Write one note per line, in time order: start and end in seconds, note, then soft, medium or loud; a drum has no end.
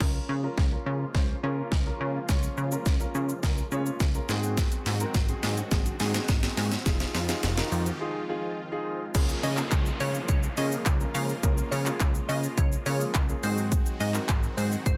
0.00 0.19 C#2 loud
0.00 4.25 C#3 medium
0.00 4.25 F3 medium
0.00 9.11 G#3 medium
0.00 4.25 A#3 medium
0.00 0.30 C#4 medium
0.00 4.25 F4 medium
0.00 0.30 F4 medium
0.00 0.30 A#4 medium
0.00 kick loud
0.00 snare medium
0.00 crash medium
0.00 riser medium
0.29 0.48 C#3 medium
0.43 0.63 C#4 medium
0.43 0.63 F4 medium
0.43 0.63 A#4 medium
0.58 0.76 C#2 loud
0.58 kick loud
0.58 snare medium
0.72 1.01 C#4 medium
0.72 1.02 F4 medium
0.72 1.02 A#4 medium
0.86 1.05 C#3 loud
1.15 1.33 C#2 loud
1.15 1.34 C#4 medium
1.15 1.34 F4 medium
1.15 1.35 C5 medium
1.15 kick loud
1.15 snare medium
1.43 1.62 C#3 loud
1.43 1.73 C#4 medium
1.43 1.73 F4 medium
1.43 1.73 A#4 medium
1.72 1.90 C#2 loud
1.72 kick loud
1.72 snare medium
1.86 2.16 C#4 medium
1.86 2.16 F4 medium
1.86 2.16 A#4 medium
2.01 2.19 C#3 loud
2.29 2.48 C#2 loud
2.29 2.58 C#4 medium
2.29 2.59 F4 medium
2.29 2.59 C#5 medium
2.29 kick loud
2.29 snare medium
2.29 shaker medium
2.43 shaker medium
2.57 2.76 C#3 medium
2.57 shaker soft
2.72 2.91 C#4 medium
2.72 2.92 F4 medium
2.72 2.92 A#4 medium
2.72 shaker medium
2.86 3.05 C#2 medium
2.86 kick loud
2.86 snare medium
2.86 shaker medium
3.00 3.30 C#4 medium
3.00 3.30 F4 medium
3.00 3.30 A#4 medium
3.00 shaker soft
3.15 3.33 C#3 loud
3.15 shaker medium
3.29 shaker medium
3.43 3.62 C#2 loud
3.43 3.63 C#4 medium
3.43 3.63 F4 medium
3.43 3.63 A#4 medium
3.43 kick loud
3.43 snare medium
3.43 shaker medium
3.58 shaker soft
3.72 3.90 C#3 loud
3.72 4.01 C#4 medium
3.72 4.01 F4 medium
3.72 4.02 C#5 loud
3.72 shaker medium
3.86 shaker medium
4.00 4.19 C#2 loud
4.00 kick loud
4.00 snare medium
4.00 shaker medium
4.14 4.29 C#4 medium
4.14 4.29 F4 medium
4.14 4.29 A#4 medium
4.14 shaker soft
4.29 4.66 G#2 loud
4.29 6.84 D#3 medium
4.29 6.84 F#3 medium
4.29 4.86 C4 medium
4.29 9.11 C4 medium
4.29 4.86 F#4 medium
4.29 6.84 F#4 medium
4.29 4.86 G#4 loud
4.29 snare medium
4.29 shaker medium
4.43 shaker medium
4.57 kick loud
4.57 snare medium
4.57 closed hi-hat medium
4.57 shaker medium
4.72 closed hi-hat medium
4.72 shaker medium
4.86 5.05 G#2 loud
4.86 snare medium
4.86 open hi-hat medium
4.86 shaker soft
5.00 5.20 C4 medium
5.00 5.20 F#4 medium
5.00 5.20 A#4 loud
5.00 closed hi-hat medium
5.00 shaker medium
5.14 5.33 G#1 loud
5.14 kick loud
5.14 snare loud
5.14 closed hi-hat medium
5.14 shaker medium
5.29 5.58 C4 medium
5.29 5.59 F#4 medium
5.29 5.59 G#4 loud
5.29 closed hi-hat soft
5.29 shaker soft
5.43 5.62 G#2 loud
5.43 snare loud
5.43 open hi-hat medium
5.43 shaker medium
5.57 closed hi-hat medium
5.57 shaker medium
5.71 5.90 G#1 loud
5.71 5.91 C4 medium
5.71 5.91 F#4 medium
5.71 5.92 G#4 medium
5.71 kick loud
5.71 snare medium
5.71 closed hi-hat medium
5.71 shaker medium
5.86 closed hi-hat soft
5.86 shaker soft
6.00 6.19 G#2 loud
6.00 6.30 C4 medium
6.00 6.30 F#4 medium
6.00 6.30 G#4 loud
6.00 snare loud
6.00 open hi-hat medium
6.00 shaker medium
6.14 snare loud
6.14 closed hi-hat medium
6.14 shaker medium
6.28 6.47 G#1 loud
6.28 kick loud
6.28 snare loud
6.28 closed hi-hat medium
6.28 shaker medium
6.43 6.73 C4 medium
6.43 6.73 F#4 medium
6.43 6.73 G#4 medium
6.43 snare loud
6.43 closed hi-hat medium
6.43 shaker medium
6.57 6.76 G#2 loud
6.57 snare loud
6.57 open hi-hat medium
6.57 shaker medium
6.72 snare loud
6.72 closed hi-hat medium
6.72 shaker medium
6.86 7.05 F1 loud
6.86 9.12 D#3 medium
6.86 9.12 F3 medium
6.86 7.16 D#4 medium
6.86 9.12 F4 medium
6.86 7.16 F4 medium
6.86 7.16 G#4 loud
6.86 kick loud
6.86 snare loud
6.86 closed hi-hat medium
6.86 shaker medium
7.00 snare loud
7.00 closed hi-hat medium
7.00 shaker medium
7.15 7.33 F2 loud
7.15 snare loud
7.15 open hi-hat medium
7.15 shaker soft
7.29 7.48 D#4 medium
7.29 7.49 F4 medium
7.29 7.49 G#4 medium
7.29 snare loud
7.29 closed hi-hat medium
7.29 shaker medium
7.43 7.62 F1 loud
7.43 snare loud
7.43 closed hi-hat medium
7.43 shaker medium
7.57 7.87 D#4 medium
7.57 7.87 F4 medium
7.57 7.87 A#4 loud
7.57 snare loud
7.57 closed hi-hat soft
7.57 shaker soft
7.72 7.90 F2 loud
7.72 open hi-hat medium
7.72 shaker medium
7.86 closed hi-hat medium
7.86 shaker medium
8.00 8.20 D#4 medium
8.00 8.20 F4 medium
8.00 8.20 G#4 medium
8.29 8.58 D#4 medium
8.29 8.59 F4 medium
8.29 8.59 G#4 loud
8.72 9.01 D#4 medium
8.72 9.01 F4 medium
8.72 9.02 G#4 loud
9.14 9.33 C#2 loud
9.14 13.39 C#3 medium
9.14 13.39 F3 medium
9.14 14.97 G#3 medium
9.14 9.44 A#3 medium
9.14 13.39 A#3 medium
9.14 9.44 C#4 medium
9.14 13.39 F4 medium
9.14 9.44 F4 medium
9.14 9.44 G#4 loud
9.14 kick loud
9.14 closed hi-hat medium
9.14 crash loud
9.14 downlifter medium
9.14 shaker medium
9.29 shaker medium
9.43 9.62 C#3 loud
9.43 9.56 D#5 medium
9.43 open hi-hat medium
9.43 shaker soft
9.57 10.26 A#3 medium
9.57 10.26 C#4 medium
9.57 10.27 F4 medium
9.57 10.27 G#4 medium
9.57 clap medium
9.57 shaker medium
9.71 9.90 C#2 loud
9.71 kick loud
9.71 clap loud
9.71 closed hi-hat medium
9.71 shaker medium
9.86 shaker soft
10.00 10.19 C#3 loud
10.00 10.26 C#5 medium
10.00 open hi-hat medium
10.00 shaker medium
10.14 shaker medium
10.28 10.47 C#2 loud
10.28 10.54 C#5 medium
10.28 kick loud
10.28 closed hi-hat medium
10.28 shaker medium
10.43 shaker medium
10.57 10.76 C#3 loud
10.57 10.87 A#3 medium
10.57 10.87 C#4 medium
10.57 10.87 F4 medium
10.57 10.87 G#4 medium
10.57 10.70 D#5 medium
10.57 open hi-hat medium
10.57 shaker medium
10.72 shaker medium
10.86 11.05 C#2 loud
10.86 kick loud
10.86 clap loud
10.86 closed hi-hat medium
10.86 shaker medium
11.00 11.30 A#3 medium
11.00 11.30 C#4 medium
11.00 11.30 F4 medium
11.00 11.30 A#4 medium
11.00 shaker medium
11.14 11.33 C#3 loud
11.14 11.27 F5 medium
11.14 open hi-hat medium
11.14 shaker medium
11.29 shaker medium
11.43 11.62 C#2 loud
11.43 11.73 A#3 loud
11.43 11.73 C#4 medium
11.43 11.73 F4 medium
11.43 11.73 A#4 loud
11.43 kick loud
11.43 closed hi-hat medium
11.43 shaker medium
11.58 shaker medium
11.71 11.90 C#3 loud
11.71 11.84 C#5 medium
11.71 open hi-hat medium
11.71 shaker medium
11.86 12.55 A#3 medium
11.86 12.55 C#4 medium
11.86 12.55 F4 medium
11.86 12.55 G#4 medium
11.86 clap medium
11.86 shaker medium
12.00 12.19 C#2 loud
12.00 kick loud
12.00 clap loud
12.00 closed hi-hat medium
12.00 shaker medium
12.15 shaker medium
12.29 12.47 C#3 loud
12.29 12.54 D#5 medium
12.29 open hi-hat medium
12.29 shaker medium
12.44 shaker medium
12.58 12.76 C#2 loud
12.58 12.83 C#5 medium
12.58 kick loud
12.58 closed hi-hat medium
12.58 shaker medium
12.72 shaker medium
12.86 13.05 C#3 loud
12.86 13.16 A#3 medium
12.86 13.16 C#4 medium
12.86 13.16 F4 medium
12.86 13.16 G#4 medium
12.86 12.99 C#5 medium
12.86 open hi-hat medium
12.86 shaker medium
13.01 shaker medium
13.15 13.33 C#2 loud
13.15 kick loud
13.15 clap loud
13.15 closed hi-hat medium
13.15 shaker medium
13.29 13.43 A#3 medium
13.29 13.43 C#4 medium
13.29 13.43 F4 medium
13.29 13.42 G#4 medium
13.29 shaker medium
13.43 13.81 G#2 loud
13.43 14.97 D#3 medium
13.43 14.97 F#3 medium
13.43 14.00 C4 medium
13.43 14.97 C4 medium
13.43 14.01 D#4 medium
13.43 14.01 F#4 medium
13.43 14.97 F#4 medium
13.43 14.01 G#4 medium
13.43 13.56 C5 medium
13.43 open hi-hat medium
13.43 shaker medium
13.58 shaker medium
13.72 kick loud
13.72 closed hi-hat medium
13.72 shaker medium
13.86 shaker medium
14.00 14.19 G#2 loud
14.00 14.13 D#5 medium
14.00 open hi-hat medium
14.00 shaker soft
14.14 14.84 C4 medium
14.14 14.84 D#4 medium
14.14 14.84 F#4 medium
14.14 14.84 A#4 medium
14.14 clap medium
14.14 shaker medium
14.29 14.48 G#1 loud
14.29 kick loud
14.29 clap loud
14.29 closed hi-hat medium
14.29 shaker medium
14.43 shaker soft
14.57 14.76 G#2 loud
14.57 14.83 C5 medium
14.57 open hi-hat medium
14.57 shaker medium
14.72 shaker medium
14.86 14.97 G#1 loud
14.86 14.97 C5 loud
14.86 kick loud
14.86 closed hi-hat medium
14.86 shaker medium